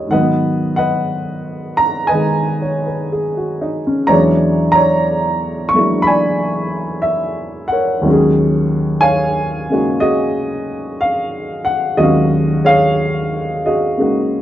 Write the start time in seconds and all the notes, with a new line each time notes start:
Already playing: D#2 C#3 G3 E4 G4 A#4 C#5 D#5
0.07 G#2 D#3 F#5
0.13 F#3 B4 D#5
0.18 B3
0.76 B4 D#5 F#5
1.77 A#5
2.07 B4 D#5 G#5
2.12 D#3 G#3
2.62 C#5
2.86 B4
3.12 G#4
3.37 F#4
3.61 D#4
3.87 C#4
4.07 E2 E3 F#3 G#3 C#5 D5 A#5
4.12 B3 D4
4.72 C#5 D5 A#5
5.69 C#6
5.74 F#3 G#3 A#3 D4 E4
6.02 B5
6.07 D5 G#5
7.02 E5
7.68 F#5
7.72 A#4 C#5
8.02 D#2 D#3
8.06 F#3 G#3 C#4
8.12 G#4
9.01 C#5 F5 G#5
9.70 C#3 G#3 A#3 D#4 F#4
10.00 F#4 G#4 D#5
11.01 F5
11.65 F#5
11.97 D#2 D#3 F#3 F#4 G#4 D#5
12.01 G#3 C#4 F5
12.65 G#4 C#5 F5
13.66 F#4 G#4 D#5
13.98 C#3 G#3 A#3 D#4 F#4